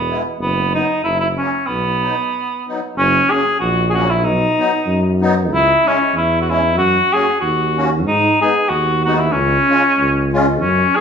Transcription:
Already playing: tuba E1, cor anglais B3
0.09 accordion G#3 B3 E4
0.39 tuba F#1, cor anglais B3
0.73 accordion F#3 B3 D#4, cor anglais D#4
1.03 tuba F#1, cor anglais E4
1.20 cor anglais E4
1.37 accordion F#3 A#3 C#4, cor anglais C#4
1.66 tuba B1, cor anglais B3
2.02 accordion F#3 B3 D#4
2.67 accordion F#3 B3 D#4
2.97 tuba F#1, cor anglais C#4
3.30 accordion F#3 A#3 C#4, cor anglais G#4
3.60 tuba A#1, cor anglais F#4
3.90 cor anglais F#4 G#4
3.95 accordion F#3 A#3 C#4
4.10 cor anglais E4
4.23 tuba B1, cor anglais D#4
4.58 accordion F#3 B3 D#4
4.87 tuba F#2
5.22 accordion F#3 B3 D#4
5.51 tuba C#2, cor anglais E4
5.85 accordion G#3 C#4 E4, cor anglais C#4
6.13 tuba E2, cor anglais E4
6.41 cor anglais F#4
6.49 accordion G#3 C#4 E4, cor anglais E4
6.77 tuba F#2, cor anglais F#4
7.13 accordion A#3 C#4 F#4, cor anglais G#4
7.40 tuba D#2, cor anglais F#4
7.77 accordion A#3 C#4 F#4
8.05 tuba G#2, cor anglais D#4
8.41 accordion G#3 B3 D#4, cor anglais G#4
8.69 tuba D#2, cor anglais F#4
9.04 accordion G#3 B3 D#4, cor anglais F#4
9.15 cor anglais E4 F#4
9.32 tuba C#2, cor anglais C#4
9.69 accordion G#3 C#4 F4
9.98 tuba C#2
10.33 accordion G#3 C#4 F4
10.59 tuba F#2, cor anglais C#4
10.96 accordion B3 C#4 F#4, cor anglais G#4

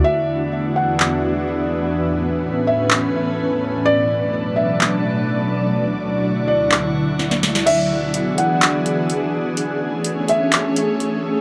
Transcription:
0.04 ambient pad E2 E3 B3 D4 F#4, synth texture D4 G#4 E5, felt piano E5
0.76 felt piano F#5
1.00 clap
1.95 ambient pad A2 C#4 B4, synth texture C#4 A4 G#5
2.67 felt piano E5
2.91 clap
3.85 ambient pad B2 F#3 A3 D4 D5, synth texture D4 B4 A5, felt piano D5
4.56 felt piano E5
4.81 clap
5.76 ambient pad D2 D3 E4, synth texture F#5 C#6
6.48 felt piano D5
6.72 clap
7.19 snare
7.31 snare
7.43 snare
7.55 snare
7.66 ambient pad E3 B3 D4 F#4 G#4, synth texture D4 G#4 E5, felt piano E5, closed hi-hat, crash
8.14 closed hi-hat
8.38 felt piano F#5, closed hi-hat
8.62 clap, closed hi-hat
8.86 closed hi-hat
9.10 closed hi-hat
9.57 synth texture A3 C#5, ambient pad A3 C#4 G#4, closed hi-hat
10.04 closed hi-hat
10.28 felt piano E5, closed hi-hat
10.53 clap, closed hi-hat
10.76 closed hi-hat
11.00 closed hi-hat

